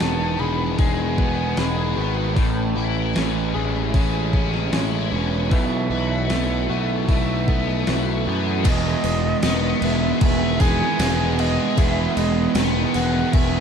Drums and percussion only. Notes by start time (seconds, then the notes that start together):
0.00 snare, open hi-hat
0.79 kick, open hi-hat
1.18 kick
1.57 snare, open hi-hat
2.36 kick, open hi-hat
3.16 snare, open hi-hat
3.94 kick, open hi-hat
4.33 kick
4.54 snare
4.73 snare, open hi-hat
5.51 kick, open hi-hat
6.30 snare, open hi-hat
7.09 kick, open hi-hat
7.48 kick
7.87 snare, open hi-hat
8.64 kick, crash, tambourine
9.04 tambourine, crash
9.43 snare, tambourine, crash
9.82 crash
10.21 kick, crash
10.60 kick, snare, tambourine, crash
10.80 snare
10.99 snare, tambourine, crash
11.38 tambourine, crash
11.77 kick, tambourine, crash
12.17 tambourine, crash
12.55 snare, tambourine, crash
12.94 tambourine, crash
13.33 kick, crash